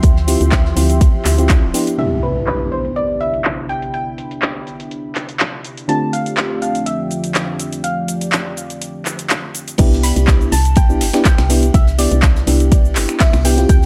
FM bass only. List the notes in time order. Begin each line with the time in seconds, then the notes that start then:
0.03 D2
0.41 D2
0.77 D2
1.25 D2
1.63 D1
9.79 C2
10.16 C2
10.52 C2
11.01 G1
11.38 C2
11.74 C2
12.12 C2
12.47 C2
12.96 G1
13.33 C2
13.69 D2